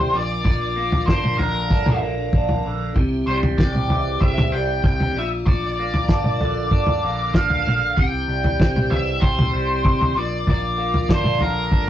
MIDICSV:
0, 0, Header, 1, 6, 480
1, 0, Start_track
1, 0, Tempo, 625652
1, 351, Time_signature, 4, 2, 24, 8
1, 9127, End_track
2, 0, Start_track
2, 0, Title_t, "Lead electric guitar"
2, 0, Program_c, 0, 29
2, 0, Note_on_c, 0, 72, 83
2, 120, Note_on_c, 0, 74, 81
2, 141, Note_off_c, 0, 72, 0
2, 339, Note_off_c, 0, 74, 0
2, 348, Note_on_c, 0, 74, 89
2, 798, Note_off_c, 0, 74, 0
2, 813, Note_on_c, 0, 72, 70
2, 1059, Note_off_c, 0, 72, 0
2, 1062, Note_on_c, 0, 70, 69
2, 1515, Note_off_c, 0, 70, 0
2, 2507, Note_on_c, 0, 72, 94
2, 2572, Note_off_c, 0, 72, 0
2, 2746, Note_on_c, 0, 74, 96
2, 3229, Note_off_c, 0, 74, 0
2, 3232, Note_on_c, 0, 76, 100
2, 3469, Note_on_c, 0, 79, 91
2, 3477, Note_off_c, 0, 76, 0
2, 3692, Note_off_c, 0, 79, 0
2, 3715, Note_on_c, 0, 79, 98
2, 3959, Note_off_c, 0, 79, 0
2, 3977, Note_on_c, 0, 76, 88
2, 4038, Note_off_c, 0, 76, 0
2, 4195, Note_on_c, 0, 74, 98
2, 5635, Note_off_c, 0, 74, 0
2, 5638, Note_on_c, 0, 77, 90
2, 6113, Note_on_c, 0, 79, 97
2, 6128, Note_off_c, 0, 77, 0
2, 6835, Note_on_c, 0, 76, 84
2, 6853, Note_off_c, 0, 79, 0
2, 7068, Note_on_c, 0, 72, 77
2, 7080, Note_off_c, 0, 76, 0
2, 7802, Note_on_c, 0, 74, 80
2, 7811, Note_off_c, 0, 72, 0
2, 8043, Note_off_c, 0, 74, 0
2, 8062, Note_on_c, 0, 74, 89
2, 8495, Note_off_c, 0, 74, 0
2, 8544, Note_on_c, 0, 72, 78
2, 8751, Note_off_c, 0, 72, 0
2, 8760, Note_on_c, 0, 70, 72
2, 9127, Note_off_c, 0, 70, 0
2, 9127, End_track
3, 0, Start_track
3, 0, Title_t, "Tonewheel organ"
3, 0, Program_c, 1, 16
3, 0, Note_on_c, 1, 55, 63
3, 0, Note_on_c, 1, 60, 54
3, 0, Note_on_c, 1, 64, 53
3, 0, Note_on_c, 1, 72, 74
3, 82, Note_off_c, 1, 60, 0
3, 83, Note_off_c, 1, 72, 0
3, 85, Note_off_c, 1, 64, 0
3, 86, Note_off_c, 1, 55, 0
3, 96, Note_on_c, 1, 53, 62
3, 102, Note_on_c, 1, 58, 58
3, 106, Note_on_c, 1, 70, 69
3, 109, Note_on_c, 1, 62, 59
3, 2240, Note_off_c, 1, 53, 0
3, 2243, Note_off_c, 1, 58, 0
3, 2245, Note_off_c, 1, 70, 0
3, 2246, Note_off_c, 1, 62, 0
3, 2259, Note_on_c, 1, 64, 53
3, 2260, Note_on_c, 1, 72, 64
3, 2268, Note_on_c, 1, 55, 63
3, 2276, Note_on_c, 1, 60, 58
3, 3926, Note_off_c, 1, 64, 0
3, 3927, Note_off_c, 1, 72, 0
3, 3931, Note_off_c, 1, 55, 0
3, 3935, Note_off_c, 1, 60, 0
3, 3947, Note_on_c, 1, 65, 52
3, 3962, Note_on_c, 1, 62, 56
3, 3962, Note_on_c, 1, 74, 72
3, 3964, Note_on_c, 1, 58, 64
3, 6087, Note_off_c, 1, 65, 0
3, 6095, Note_off_c, 1, 62, 0
3, 6095, Note_off_c, 1, 74, 0
3, 6096, Note_off_c, 1, 58, 0
3, 6110, Note_on_c, 1, 72, 67
3, 6117, Note_on_c, 1, 60, 58
3, 6119, Note_on_c, 1, 64, 58
3, 6123, Note_on_c, 1, 55, 63
3, 7774, Note_off_c, 1, 72, 0
3, 7777, Note_off_c, 1, 60, 0
3, 7778, Note_off_c, 1, 64, 0
3, 7780, Note_off_c, 1, 55, 0
3, 7800, Note_on_c, 1, 53, 65
3, 7806, Note_on_c, 1, 62, 53
3, 7808, Note_on_c, 1, 58, 57
3, 7808, Note_on_c, 1, 70, 71
3, 9127, Note_off_c, 1, 53, 0
3, 9127, Note_off_c, 1, 58, 0
3, 9127, Note_off_c, 1, 62, 0
3, 9127, Note_off_c, 1, 70, 0
3, 9127, End_track
4, 0, Start_track
4, 0, Title_t, "Clean electric guitar"
4, 0, Program_c, 2, 27
4, 0, Note_on_c, 2, 52, 70
4, 0, Note_on_c, 2, 55, 67
4, 0, Note_on_c, 2, 60, 57
4, 104, Note_off_c, 2, 52, 0
4, 104, Note_off_c, 2, 55, 0
4, 104, Note_on_c, 2, 46, 62
4, 111, Note_off_c, 2, 60, 0
4, 334, Note_off_c, 2, 46, 0
4, 343, Note_on_c, 2, 46, 65
4, 585, Note_on_c, 2, 58, 70
4, 829, Note_on_c, 2, 62, 72
4, 1069, Note_on_c, 2, 50, 68
4, 1304, Note_off_c, 2, 62, 0
4, 1313, Note_on_c, 2, 62, 67
4, 1535, Note_off_c, 2, 58, 0
4, 1545, Note_on_c, 2, 58, 67
4, 1546, Note_off_c, 2, 46, 0
4, 1795, Note_off_c, 2, 62, 0
4, 1804, Note_on_c, 2, 62, 66
4, 2036, Note_off_c, 2, 50, 0
4, 2046, Note_on_c, 2, 50, 65
4, 2267, Note_off_c, 2, 58, 0
4, 2277, Note_off_c, 2, 50, 0
4, 2277, Note_off_c, 2, 62, 0
4, 2279, Note_on_c, 2, 48, 72
4, 2524, Note_on_c, 2, 55, 71
4, 2767, Note_on_c, 2, 60, 77
4, 3002, Note_on_c, 2, 52, 67
4, 3229, Note_off_c, 2, 60, 0
4, 3238, Note_on_c, 2, 60, 69
4, 3467, Note_off_c, 2, 55, 0
4, 3473, Note_off_c, 2, 48, 0
4, 3477, Note_on_c, 2, 55, 71
4, 3704, Note_off_c, 2, 60, 0
4, 3713, Note_on_c, 2, 60, 60
4, 3951, Note_off_c, 2, 60, 0
4, 3952, Note_off_c, 2, 55, 0
4, 3955, Note_off_c, 2, 52, 0
4, 3964, Note_on_c, 2, 46, 63
4, 4190, Note_off_c, 2, 46, 0
4, 4199, Note_on_c, 2, 46, 66
4, 4444, Note_on_c, 2, 58, 71
4, 4671, Note_on_c, 2, 62, 70
4, 4915, Note_on_c, 2, 50, 71
4, 5150, Note_off_c, 2, 62, 0
4, 5159, Note_on_c, 2, 62, 68
4, 5394, Note_off_c, 2, 46, 0
4, 5395, Note_off_c, 2, 58, 0
4, 5405, Note_on_c, 2, 58, 70
4, 5639, Note_off_c, 2, 62, 0
4, 5648, Note_on_c, 2, 62, 58
4, 5870, Note_off_c, 2, 50, 0
4, 5879, Note_on_c, 2, 50, 56
4, 6114, Note_off_c, 2, 50, 0
4, 6117, Note_off_c, 2, 58, 0
4, 6119, Note_off_c, 2, 62, 0
4, 6123, Note_on_c, 2, 48, 67
4, 6357, Note_on_c, 2, 55, 69
4, 6602, Note_on_c, 2, 60, 76
4, 6840, Note_on_c, 2, 52, 63
4, 7066, Note_off_c, 2, 60, 0
4, 7075, Note_on_c, 2, 60, 67
4, 7306, Note_off_c, 2, 55, 0
4, 7315, Note_on_c, 2, 55, 64
4, 7317, Note_off_c, 2, 48, 0
4, 7542, Note_off_c, 2, 60, 0
4, 7552, Note_on_c, 2, 60, 66
4, 7790, Note_on_c, 2, 46, 57
4, 7791, Note_off_c, 2, 60, 0
4, 7793, Note_off_c, 2, 55, 0
4, 7796, Note_off_c, 2, 52, 0
4, 8028, Note_off_c, 2, 46, 0
4, 8038, Note_on_c, 2, 46, 66
4, 8270, Note_on_c, 2, 58, 69
4, 8513, Note_on_c, 2, 62, 76
4, 8746, Note_on_c, 2, 50, 67
4, 8972, Note_off_c, 2, 62, 0
4, 8981, Note_on_c, 2, 62, 71
4, 9127, Note_off_c, 2, 46, 0
4, 9127, Note_off_c, 2, 50, 0
4, 9127, Note_off_c, 2, 58, 0
4, 9127, Note_off_c, 2, 62, 0
4, 9127, End_track
5, 0, Start_track
5, 0, Title_t, "Fingered electric bass"
5, 0, Program_c, 3, 33
5, 0, Note_on_c, 3, 48, 81
5, 91, Note_off_c, 3, 48, 0
5, 97, Note_on_c, 3, 34, 76
5, 328, Note_off_c, 3, 34, 0
5, 347, Note_on_c, 3, 34, 80
5, 799, Note_off_c, 3, 34, 0
5, 827, Note_on_c, 3, 31, 81
5, 1054, Note_off_c, 3, 31, 0
5, 1069, Note_on_c, 3, 34, 91
5, 1295, Note_off_c, 3, 34, 0
5, 1305, Note_on_c, 3, 43, 82
5, 1532, Note_off_c, 3, 43, 0
5, 1548, Note_on_c, 3, 34, 92
5, 1774, Note_off_c, 3, 34, 0
5, 1785, Note_on_c, 3, 34, 80
5, 2012, Note_off_c, 3, 34, 0
5, 2030, Note_on_c, 3, 34, 84
5, 2254, Note_off_c, 3, 34, 0
5, 2265, Note_on_c, 3, 36, 87
5, 2492, Note_off_c, 3, 36, 0
5, 2507, Note_on_c, 3, 36, 88
5, 2733, Note_off_c, 3, 36, 0
5, 2746, Note_on_c, 3, 36, 92
5, 2969, Note_off_c, 3, 36, 0
5, 2973, Note_on_c, 3, 36, 88
5, 3206, Note_off_c, 3, 36, 0
5, 3227, Note_on_c, 3, 36, 79
5, 3453, Note_off_c, 3, 36, 0
5, 3457, Note_on_c, 3, 36, 89
5, 3687, Note_off_c, 3, 36, 0
5, 3715, Note_on_c, 3, 36, 86
5, 3931, Note_off_c, 3, 36, 0
5, 3936, Note_on_c, 3, 34, 77
5, 4167, Note_off_c, 3, 34, 0
5, 4194, Note_on_c, 3, 34, 71
5, 4642, Note_off_c, 3, 34, 0
5, 4669, Note_on_c, 3, 31, 78
5, 4894, Note_off_c, 3, 31, 0
5, 4922, Note_on_c, 3, 34, 92
5, 5141, Note_off_c, 3, 34, 0
5, 5151, Note_on_c, 3, 43, 84
5, 5375, Note_off_c, 3, 43, 0
5, 5404, Note_on_c, 3, 34, 78
5, 5622, Note_off_c, 3, 34, 0
5, 5628, Note_on_c, 3, 34, 86
5, 5854, Note_off_c, 3, 34, 0
5, 5880, Note_on_c, 3, 34, 76
5, 6100, Note_off_c, 3, 34, 0
5, 6117, Note_on_c, 3, 36, 72
5, 6339, Note_off_c, 3, 36, 0
5, 6351, Note_on_c, 3, 36, 88
5, 6576, Note_off_c, 3, 36, 0
5, 6593, Note_on_c, 3, 36, 87
5, 6817, Note_off_c, 3, 36, 0
5, 6834, Note_on_c, 3, 36, 87
5, 7057, Note_off_c, 3, 36, 0
5, 7077, Note_on_c, 3, 36, 85
5, 7299, Note_off_c, 3, 36, 0
5, 7315, Note_on_c, 3, 36, 88
5, 7538, Note_off_c, 3, 36, 0
5, 7553, Note_on_c, 3, 48, 82
5, 7777, Note_off_c, 3, 48, 0
5, 7788, Note_on_c, 3, 34, 75
5, 8014, Note_off_c, 3, 34, 0
5, 8034, Note_on_c, 3, 34, 80
5, 8482, Note_off_c, 3, 34, 0
5, 8511, Note_on_c, 3, 31, 87
5, 8731, Note_off_c, 3, 31, 0
5, 8735, Note_on_c, 3, 34, 89
5, 8967, Note_off_c, 3, 34, 0
5, 8987, Note_on_c, 3, 43, 91
5, 9127, Note_off_c, 3, 43, 0
5, 9127, End_track
6, 0, Start_track
6, 0, Title_t, "Drums"
6, 341, Note_on_c, 9, 43, 77
6, 344, Note_on_c, 9, 36, 93
6, 418, Note_off_c, 9, 43, 0
6, 421, Note_off_c, 9, 36, 0
6, 708, Note_on_c, 9, 43, 89
6, 784, Note_off_c, 9, 43, 0
6, 827, Note_on_c, 9, 36, 105
6, 836, Note_on_c, 9, 38, 72
6, 904, Note_off_c, 9, 36, 0
6, 913, Note_off_c, 9, 38, 0
6, 951, Note_on_c, 9, 47, 77
6, 1028, Note_off_c, 9, 47, 0
6, 1069, Note_on_c, 9, 43, 76
6, 1146, Note_off_c, 9, 43, 0
6, 1307, Note_on_c, 9, 36, 106
6, 1384, Note_off_c, 9, 36, 0
6, 1429, Note_on_c, 9, 43, 83
6, 1429, Note_on_c, 9, 47, 87
6, 1506, Note_off_c, 9, 43, 0
6, 1506, Note_off_c, 9, 47, 0
6, 1787, Note_on_c, 9, 36, 105
6, 1864, Note_off_c, 9, 36, 0
6, 1909, Note_on_c, 9, 43, 82
6, 1986, Note_off_c, 9, 43, 0
6, 2269, Note_on_c, 9, 36, 95
6, 2271, Note_on_c, 9, 43, 82
6, 2345, Note_off_c, 9, 36, 0
6, 2347, Note_off_c, 9, 43, 0
6, 2632, Note_on_c, 9, 43, 91
6, 2709, Note_off_c, 9, 43, 0
6, 2749, Note_on_c, 9, 36, 113
6, 2760, Note_on_c, 9, 38, 73
6, 2826, Note_off_c, 9, 36, 0
6, 2836, Note_off_c, 9, 38, 0
6, 2875, Note_on_c, 9, 47, 71
6, 2952, Note_off_c, 9, 47, 0
6, 2992, Note_on_c, 9, 43, 84
6, 3069, Note_off_c, 9, 43, 0
6, 3232, Note_on_c, 9, 36, 102
6, 3309, Note_off_c, 9, 36, 0
6, 3360, Note_on_c, 9, 43, 93
6, 3360, Note_on_c, 9, 47, 82
6, 3437, Note_off_c, 9, 43, 0
6, 3437, Note_off_c, 9, 47, 0
6, 3711, Note_on_c, 9, 36, 98
6, 3788, Note_off_c, 9, 36, 0
6, 3839, Note_on_c, 9, 43, 78
6, 3915, Note_off_c, 9, 43, 0
6, 4193, Note_on_c, 9, 36, 96
6, 4199, Note_on_c, 9, 43, 73
6, 4270, Note_off_c, 9, 36, 0
6, 4275, Note_off_c, 9, 43, 0
6, 4556, Note_on_c, 9, 43, 82
6, 4632, Note_off_c, 9, 43, 0
6, 4669, Note_on_c, 9, 36, 106
6, 4673, Note_on_c, 9, 38, 73
6, 4746, Note_off_c, 9, 36, 0
6, 4750, Note_off_c, 9, 38, 0
6, 4789, Note_on_c, 9, 47, 82
6, 4865, Note_off_c, 9, 47, 0
6, 4915, Note_on_c, 9, 43, 74
6, 4992, Note_off_c, 9, 43, 0
6, 5150, Note_on_c, 9, 36, 94
6, 5227, Note_off_c, 9, 36, 0
6, 5267, Note_on_c, 9, 43, 87
6, 5344, Note_off_c, 9, 43, 0
6, 5632, Note_on_c, 9, 36, 103
6, 5637, Note_on_c, 9, 38, 76
6, 5709, Note_off_c, 9, 36, 0
6, 5713, Note_off_c, 9, 38, 0
6, 5754, Note_on_c, 9, 43, 76
6, 5831, Note_off_c, 9, 43, 0
6, 5885, Note_on_c, 9, 47, 74
6, 5962, Note_off_c, 9, 47, 0
6, 6117, Note_on_c, 9, 36, 95
6, 6122, Note_on_c, 9, 43, 72
6, 6194, Note_off_c, 9, 36, 0
6, 6199, Note_off_c, 9, 43, 0
6, 6477, Note_on_c, 9, 43, 87
6, 6554, Note_off_c, 9, 43, 0
6, 6596, Note_on_c, 9, 36, 107
6, 6607, Note_on_c, 9, 38, 76
6, 6672, Note_off_c, 9, 36, 0
6, 6684, Note_off_c, 9, 38, 0
6, 6723, Note_on_c, 9, 47, 77
6, 6800, Note_off_c, 9, 47, 0
6, 6837, Note_on_c, 9, 43, 75
6, 6913, Note_off_c, 9, 43, 0
6, 7074, Note_on_c, 9, 36, 102
6, 7151, Note_off_c, 9, 36, 0
6, 7202, Note_on_c, 9, 43, 88
6, 7202, Note_on_c, 9, 47, 81
6, 7278, Note_off_c, 9, 43, 0
6, 7278, Note_off_c, 9, 47, 0
6, 7555, Note_on_c, 9, 36, 105
6, 7631, Note_off_c, 9, 36, 0
6, 7683, Note_on_c, 9, 43, 77
6, 7760, Note_off_c, 9, 43, 0
6, 8035, Note_on_c, 9, 36, 90
6, 8045, Note_on_c, 9, 43, 74
6, 8112, Note_off_c, 9, 36, 0
6, 8121, Note_off_c, 9, 43, 0
6, 8393, Note_on_c, 9, 43, 86
6, 8470, Note_off_c, 9, 43, 0
6, 8509, Note_on_c, 9, 36, 95
6, 8516, Note_on_c, 9, 38, 75
6, 8586, Note_off_c, 9, 36, 0
6, 8593, Note_off_c, 9, 38, 0
6, 8625, Note_on_c, 9, 47, 77
6, 8702, Note_off_c, 9, 47, 0
6, 8749, Note_on_c, 9, 43, 75
6, 8826, Note_off_c, 9, 43, 0
6, 8990, Note_on_c, 9, 36, 106
6, 9067, Note_off_c, 9, 36, 0
6, 9127, End_track
0, 0, End_of_file